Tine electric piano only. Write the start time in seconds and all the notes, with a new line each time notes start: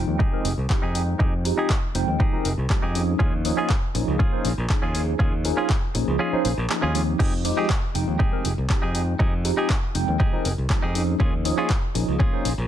Already playing: F3 G#3 C4 D#4 G5
0.32 F3 G#3 C4 D#4 A#4
0.70 F3 G#3 C4 D#4 G4
0.94 F3 G#3 C4 D#4 G5
1.44 F3 G#3 C4 D#4 G4
1.95 F3 G#3 C4 D#4 G5
2.32 F3 G#3 C4 D#4 A#4
2.70 F3 G#3 C4 D#4 G4
2.95 F3 A#3 C#4 D#4 G#4
3.45 F3 A#3 C#4 D#4 G#4
3.95 F3 A#3 C#4 D#4 G#4
4.32 F3 A#3 C#4 D#4 C5
4.70 F3 A#3 C#4 D#4 G#4
4.95 F3 A#3 C#4 D#4 G#4
5.45 F3 A#3 C#4 D#4 G#4
5.94 F3 A#3 C#4 D#4 G#4
6.33 F3 A#3 C#4 D#4 C5
6.70 F3 A#3 C#4 D#4 G#4
6.94 F3 G#3 C4 D#4 G4
7.44 F3 G#3 C4 D#4 G4
7.94 F3 G#3 C4 D#4 G5
8.32 F3 G#3 C4 D#4 A#4
8.69 F3 G#3 C4 D#4 G4
8.95 F3 G#3 C4 D#4 G5
9.44 F3 G#3 C4 D#4 G4
9.94 F3 G#3 C4 D#4 G5
10.32 F3 G#3 C4 D#4 A#4
10.70 F3 G#3 C4 D#4 G4
10.95 F3 A#3 C#4 D#4 G#4
11.45 F3 A#3 C#4 D#4 G#4
11.95 F3 A#3 C#4 D#4 G#4
12.33 F3 A#3 C#4 D#4 C5